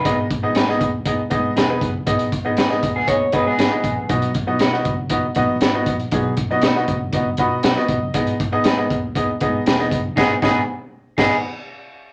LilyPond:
<<
  \new Staff \with { instrumentName = "Clean electric guitar" } { \time 4/4 \key gis \minor \tempo 4 = 119 r4 <dis' gis' b'>16 r4. r16 <dis' gis' b'>16 r8. | r4 <dis' gis' b'>16 r4. r16 <dis' gis' b'>16 r8. | r4 <dis' fis' b'>16 r4. r16 <dis' fis' b'>16 r8. | r4 <dis' fis' b'>16 r4. r16 <dis' fis' b'>16 r8. |
r4 <dis' gis' b'>16 r4. r16 <dis' gis' b'>16 r8. | <dis' gis' b'>8 <dis' gis' b'>8 r4 <dis' gis' b'>8 r4. | }
  \new Staff \with { instrumentName = "Clean electric guitar" } { \time 4/4 \key gis \minor <dis' b'>16 r2. r8. | r4. r16 <b gis'>16 cis''8 <dis' b'>16 <b gis'>4~ <b gis'>16 | r1 | r1 |
r1 | <b gis'>8 <b gis'>8 r4 <b gis'>8 r4. | }
  \new Staff \with { instrumentName = "Grand piano" } { \time 4/4 \key gis \minor << { <ais' fis''>8 r2. r8 | r1 | r1 | r2 r8 b''8 fis''8 dis''8 |
r1 | r1 | } \\ { <b dis' gis' dis''>8 r16 <b dis' gis' dis''>16 r16 <b dis' gis' dis''>8 r16 <b dis' gis' dis''>16 r16 <b dis' gis' dis''>8 r16 <b dis' gis' b'>8 r16 | <b dis' gis' dis''>8 r16 <b dis' gis' dis''>16 r16 <b dis' gis' dis''>8 r16 <b dis' gis' dis''>16 r16 <b dis' gis' dis''>8 r16 <b dis' gis' dis''>8 r16 | <b dis' fis' dis''>8 r16 <b dis' fis' dis''>16 r16 <b dis' fis' dis''>8 r16 <b dis' fis' dis''>16 r16 <b dis' fis' dis''>8 r16 <b dis' fis' dis''>8 r16 | <b dis' fis' gis'>8 r16 <b dis' fis' dis''>16 r16 <b dis' fis' dis''>8 r16 <b dis' fis' dis''>16 r16 <b dis' fis' dis''>8 r16 <b dis' fis' dis''>8 r16 |
<b dis' gis' dis''>8 r16 <b dis' gis' dis''>16 r16 <b dis' gis' dis''>8 r16 <b dis' gis' dis''>16 r16 <b dis' gis' dis''>8 r16 <b dis' gis' dis''>8 r16 | <b dis' gis' dis''>8 <b dis' gis' dis''>8 r4 <b dis' gis' dis''>8 r4. | } >> }
  \new Staff \with { instrumentName = "Picked electric bass" } { \clef bass \time 4/4 \key gis \minor gis,,8. gis,,16 gis,8 dis,4 gis,8 e,,8 fis,,8 | gis,,8. gis,,16 gis,8 dis,8 dis,8 r16 gis,16 gis,,16 r16 ais,,8 | b,,8. b,,16 b,8 fis,,4 ais,,8 gis,,8 ais,,8 | b,,8. b,,16 b,8 fis,,8 fis,,8 b,8 b,,16 r16 e,,16 fis,,16 |
gis,,8. gis,,16 gis,8 dis,4 gis,8 e,,8 fis,,8 | gis,,8 gis,,8 r4 gis,,8 r4. | }
  \new DrumStaff \with { instrumentName = "Drums" } \drummode { \time 4/4 <hh bd>8 <hh bd>8 <hh sn>16 sn16 <hh bd>8 <hh bd>8 <hh bd>8 <hh sn>8 <hh bd>8 | <hh bd>16 hh16 <hh bd>8 <hh sn>16 sn16 <hh bd>8 <hh bd>8 <hh bd>8 <hh sn>8 <hh bd>8 | <hh bd>16 hh16 <hh bd>8 <hh sn>16 sn16 <hh bd>8 <hh bd>8 <hh bd>8 <hh sn>8 <hh bd>16 hh16 | <hh bd>8 <hh bd>8 <hh sn>16 sn16 <hh bd>8 <hh bd>8 <hh bd>8 <hh sn>16 sn16 <hh bd>8 |
<hh bd>16 hh16 <hh bd>8 <hh sn>8 <hh bd>8 <hh bd>8 <hh bd>8 <hh sn>16 sn16 <hh bd>8 | <cymc bd sn>8 <bd sn>8 r4 <cymc bd sn>4 r4 | }
>>